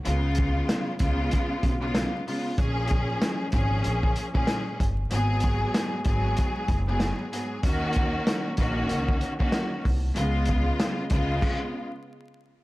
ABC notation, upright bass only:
X:1
M:4/4
L:1/16
Q:"Swing 16ths" 1/4=95
K:C#mix
V:1 name="Upright bass" clef=bass
C,,4 z2 C,,2 z2 B,,,3 z3 | A,,,4 z2 G,,,2 A,,,2 z4 =G,,,2 | G,,,4 z2 G,,,2 z2 F,,,3 z3 | D,,4 z2 A,,,2 C,,2 z4 ^B,,,2 |
C,,4 z2 C,,2 z8 |]